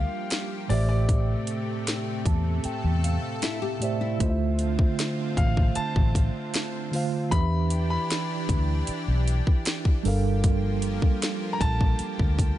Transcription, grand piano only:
0.00 0.73 F5 loud
0.69 0.87 D5 medium
0.89 2.41 D5 medium
5.37 5.77 F5 medium
5.76 7.37 A5 loud
7.31 7.89 B5 loud
7.90 9.03 B5 medium
11.53 11.60 A#5 medium
11.61 12.58 A5 loud

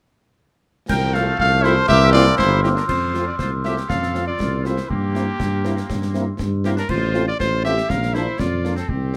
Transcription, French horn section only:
1.16 1.25 A3 medium
1.16 1.25 C4 medium
1.16 1.24 F4 medium
1.65 1.74 A3 medium
1.65 1.74 C4 medium
1.65 1.74 F4 medium
2.15 2.24 A#3 medium
2.15 2.24 C4 medium
2.15 2.24 E4 medium
2.65 2.74 A#3 medium
2.65 2.74 C4 medium
2.65 2.74 E4 medium
3.15 3.24 A3 medium
3.15 3.24 C4 medium
3.15 3.24 F4 medium
3.65 3.74 A3 soft
3.65 3.74 C4 soft
3.65 3.74 F4 soft
4.15 4.24 A3 medium
4.15 4.24 C4 medium
4.15 4.24 F4 medium
4.66 4.74 A3 soft
4.66 4.75 C4 soft
4.66 4.74 F4 soft
5.15 5.24 A#3 medium
5.15 5.24 C4 medium
5.15 5.24 E4 medium
5.65 5.74 A#3 medium
5.65 5.74 C4 medium
5.65 5.74 E4 medium
6.14 6.24 A#3 medium
6.14 6.24 C4 medium
6.14 6.23 E4 medium
6.65 6.74 A#3 medium
6.65 6.74 C4 medium
6.65 6.74 E4 medium
7.14 7.23 A3 medium
7.14 7.23 C4 medium
7.14 7.23 F4 medium
7.64 7.73 A3 medium
7.64 7.73 C4 medium
7.64 7.73 F4 medium
8.14 8.23 F3 medium
8.14 8.24 A#3 medium
8.14 8.23 D4 medium
8.64 8.73 F3 medium
8.64 8.73 A#3 medium
8.64 8.73 D4 medium

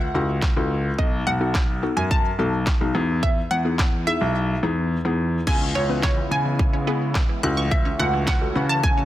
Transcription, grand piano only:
0.14 0.46 C#2 medium
0.56 0.88 C#2 medium
1.27 1.80 B1 medium
1.97 2.29 F#2 medium
2.39 2.71 B1 medium
2.81 2.91 B1 medium
2.95 3.37 E2 loud
3.51 4.04 E2 medium
4.21 4.53 B1 medium
4.63 4.95 E2 medium
5.05 5.37 E2 medium
5.75 6.18 C#2 medium
6.31 7.17 C#3 medium
7.43 7.86 C#2 loud
7.99 8.42 C#2 medium
8.56 9.05 C#3 medium

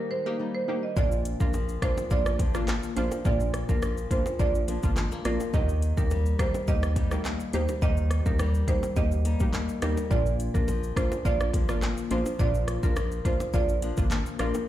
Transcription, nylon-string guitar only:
0.00 0.96 D#3 medium
0.00 0.38 G3 medium
0.00 0.10 A#3 medium
0.00 0.39 D#4 medium
0.11 0.26 G#3 medium
0.26 0.39 A#3 medium
0.39 0.67 G3 medium
0.39 2.40 A#3 medium
0.39 1.03 D#4 medium
0.68 1.03 G3 medium
0.97 3.24 A#2 medium
1.54 2.38 F3 medium
2.40 2.96 F3 medium
2.40 2.68 A#3 medium
2.40 4.68 D4 medium
2.68 4.68 A#3 medium
2.97 3.81 F3 medium
3.25 5.54 A#2 medium
3.82 4.67 F3 medium
4.68 5.24 F3 medium
4.68 4.96 A#3 medium
4.68 5.60 D4 medium
4.97 5.12 G#3 medium
5.12 5.60 A#3 medium
5.25 5.60 F3 medium
5.54 7.81 D#3 medium
6.11 6.95 G3 medium
6.96 7.52 G3 medium
6.96 7.25 A#3 medium
6.96 9.25 D#4 medium
7.25 9.25 A#3 medium
7.53 8.38 G3 medium
7.82 10.11 D#3 medium
8.39 9.24 G3 medium
9.25 9.81 G3 medium
9.25 9.53 A#3 medium
9.25 10.17 D#4 medium
9.53 11.54 A#3 medium
9.82 10.17 G3 medium
10.11 12.38 A#2 medium
10.68 11.52 F3 medium
11.54 12.10 F3 medium
11.54 11.82 A#3 medium
11.54 13.82 D4 medium
11.82 13.83 A#3 medium
12.11 12.95 F3 medium
12.39 14.68 A#2 medium
12.97 13.81 F3 medium
13.82 14.38 F3 medium
13.82 14.10 A#3 medium
13.82 14.68 D4 medium
14.11 14.68 A#3 medium
14.39 14.68 F3 medium

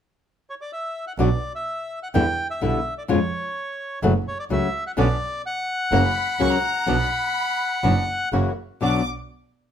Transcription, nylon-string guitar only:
1.19 1.28 B2 medium
1.19 1.28 F#3 medium
1.19 1.28 B3 medium
1.19 1.28 D4 medium
1.19 1.29 F#4 medium
2.14 2.23 B2 medium
2.14 2.23 D3 medium
2.14 2.24 G3 medium
2.14 2.24 B3 medium
2.14 2.24 E4 medium
2.61 2.79 B2 medium
2.61 2.79 D3 medium
2.61 2.79 G3 medium
2.61 2.79 B3 medium
2.61 2.79 E4 medium
3.08 3.18 B2 medium
3.08 3.18 F3 medium
3.08 3.18 G#3 medium
3.08 3.18 C#4 medium
3.08 3.18 F4 medium
4.03 4.12 C#3 medium
4.03 4.12 F#3 medium
4.03 4.12 A3 medium
4.03 4.12 C#4 medium
4.03 4.12 F#4 medium
4.50 4.67 C#3 medium
4.50 4.67 F#3 medium
4.50 4.67 A3 medium
4.50 4.67 C#4 medium
4.50 4.67 F#4 medium
4.97 5.06 B2 medium
4.97 5.06 D3 medium
4.97 5.06 B3 medium
4.97 5.06 C#4 medium
4.97 5.06 F#4 medium
5.92 6.01 C#3 medium
5.92 6.01 F#3 medium
5.92 6.01 A#3 medium
5.92 6.01 C#4 medium
5.92 6.01 F#4 medium
6.39 6.56 C#3 medium
6.39 6.56 F#3 medium
6.39 6.56 A#3 medium
6.39 6.57 C#4 medium
6.39 6.57 F#4 medium
6.87 6.96 B2 medium
6.87 6.96 F#3 medium
6.87 6.96 B3 medium
6.87 6.96 D4 medium
6.87 6.96 F#4 medium
7.83 7.92 B2 medium
7.83 7.92 F#3 medium
7.83 7.93 B3 medium
7.83 7.93 D4 medium
7.83 7.93 F#4 medium
8.32 8.50 C#3 soft
8.32 8.50 E3 medium
8.32 8.50 A#3 medium
8.32 8.50 C#4 medium
8.32 8.50 F#4 medium
8.81 9.00 B2 medium
8.81 9.00 F#3 medium
8.81 9.01 B3 medium
8.81 9.01 D4 medium
8.81 9.01 F#4 medium

